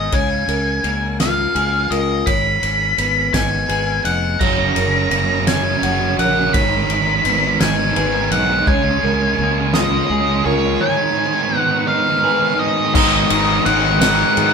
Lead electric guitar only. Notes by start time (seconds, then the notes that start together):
Already playing: D#5
0.14 G#5
1.20 F5
1.91 D#5
2.26 B5
3.33 G#5
4.05 F#5
4.39 A#5
5.48 G#5
6.19 F#5
6.53 B5
7.61 G#5
8.32 F#5
8.68 G#5
9.74 D#5
10.46 C#5
10.81 G#5
11.58 F#5
11.88 F5
12.59 D#5
12.95 D#5
13.65 F#5
14.00 F#5